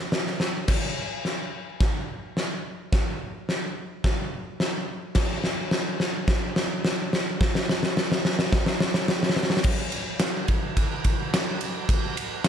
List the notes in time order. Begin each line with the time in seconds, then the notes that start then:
0.12 snare
0.27 snare
0.40 snare
0.68 kick, snare, crash
1.25 snare
1.80 kick, snare
2.37 snare
2.92 kick, snare
3.49 snare
4.04 kick, snare
4.60 snare
5.15 kick, snare, crash
5.44 snare
5.71 snare
6.00 snare
6.28 kick, snare
6.56 snare
6.85 snare
7.13 snare
7.41 kick, snare
7.55 snare
7.69 snare
7.83 snare
7.97 snare
8.12 snare
8.25 snare
8.39 snare
8.52 kick, snare
8.66 snare
8.80 snare
8.94 snare
9.08 snare
9.23 snare
9.29 snare
9.36 snare
9.43 snare
9.50 snare
9.57 snare
9.64 kick, crash
9.92 ride
10.20 snare, ride
10.48 kick, ride
10.77 kick, ride
11.04 kick, ride
11.34 snare, ride
11.61 ride
11.89 kick, ride
12.17 ride
12.44 snare, ride